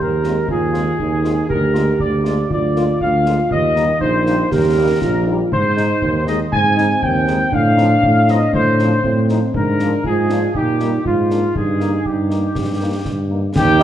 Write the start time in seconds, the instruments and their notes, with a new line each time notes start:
0.00 tuba D#2, euphonium G4, trumpet section A#4
0.24 french horn section G#3 C4 F4, snare
0.48 tuba D#2, euphonium F4, trumpet section G#4, concert bass drum
0.73 french horn section G#3 C4 F4, snare
0.99 tuba D#2, euphonium D#4, concert bass drum
1.23 french horn section G#3 C4 F4, snare
1.49 tuba D2, euphonium G4, trumpet section A#4, concert bass drum
1.73 french horn section G#3 A#3 F4, snare
2.00 tuba D2, trumpet section D5, concert bass drum
2.24 french horn section G#3 A#3 F4, snare
2.50 tuba D2, euphonium F4, trumpet section D5, concert bass drum
2.76 french horn section G#3 A#3 F4, snare
3.01 tuba D2, trumpet section F5, concert bass drum
3.26 french horn section G#3 A#3 F4, snare
3.51 tuba D#2, trumpet section D#5, concert bass drum
3.75 french horn section G3 A#3 D#4, snare
4.00 tuba A#1, euphonium D#4, trumpet section C5, concert bass drum
4.25 french horn section G3 A#3 D#4, snare
4.51 tuba D#2, euphonium G4, trumpet section A#4, concert bass drum, snare
4.76 french horn section G3 A#3 D#4
5.01 tuba A#1, euphonium F4, concert bass drum, snare
5.27 french horn section G3 A#3 D#4
5.52 tuba G#2, euphonium D#4, trumpet section C5, concert bass drum
5.77 french horn section G#3 D#4, snare
6.02 tuba D#2, concert bass drum
6.26 french horn section G#3 D#4, trumpet section D#5, snare
6.52 tuba G#2, euphonium C4, trumpet section G#5, concert bass drum
6.77 french horn section G#3 D#4, snare
7.02 tuba D#2, trumpet section G5, concert bass drum
7.27 french horn section G#3 D#4, snare
7.52 tuba A2, euphonium D4, trumpet section F5, concert bass drum
7.77 french horn section F3 C4 D#4, snare
8.03 tuba A2, concert bass drum
8.28 french horn section F3 C4 D#4, trumpet section D#5, snare
8.53 tuba A2, trumpet section C5, concert bass drum
8.79 french horn section F3 C4 D#4, snare
9.04 tuba A2, euphonium C4, concert bass drum
9.29 french horn section F3 C4 D#4, snare
9.54 tuba G#2, euphonium D4, trumpet section A#4, concert bass drum
9.79 french horn section F3 A#3 D4, snare
10.04 tuba G#2, euphonium F4, trumpet section G#4, concert bass drum
10.30 french horn section F3 A#3 D4, snare
10.55 tuba A#2, euphonium D#4, trumpet section G4, concert bass drum
10.80 french horn section G3 A#3 D#4, snare
11.05 tuba G#2, euphonium F4, trumpet section F4, concert bass drum
11.30 french horn section A#3 D4, snare
11.55 tuba G2, euphonium D#4, trumpet section G#4, concert bass drum
11.80 french horn section A#3 D#4, snare
12.05 tuba G2, trumpet section G4, concert bass drum
12.29 french horn section A#3 D#4, snare
12.55 tuba G2, concert bass drum, snare
12.80 french horn section A#3 D#4
13.05 tuba G2, concert bass drum, snare
13.30 french horn section A#3 D#4
13.56 tuba D#2, euphonium D#4, trumpet section G4, piccolo G5, concert bass drum, snare, crash
13.80 trombone section G3 D#4, french horn section A#3, snare